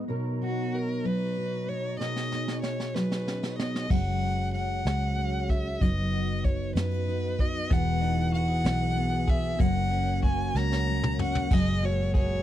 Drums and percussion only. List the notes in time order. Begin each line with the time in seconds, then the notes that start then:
2.01 snare
2.16 snare
2.32 snare
2.48 snare
2.63 snare
2.80 snare
2.96 snare
3.12 snare
3.28 snare
3.43 snare
3.59 snare
3.75 snare
3.90 kick, crash
4.23 closed hi-hat
4.54 closed hi-hat
4.86 snare, closed hi-hat
5.19 closed hi-hat
5.49 kick, closed hi-hat
5.81 kick, closed hi-hat
6.13 closed hi-hat
6.44 kick, closed hi-hat
6.76 snare, closed hi-hat
7.09 closed hi-hat
7.39 kick, closed hi-hat
7.71 kick, closed hi-hat
8.03 closed hi-hat
8.34 closed hi-hat
8.65 snare, closed hi-hat
8.98 closed hi-hat
9.28 kick, closed hi-hat
9.60 kick, closed hi-hat
9.92 closed hi-hat
10.23 kick, closed hi-hat
10.56 snare
10.72 snare
11.03 mid tom
11.19 mid tom
11.35 floor tom
11.51 kick, crash
11.83 ride
12.14 kick, ride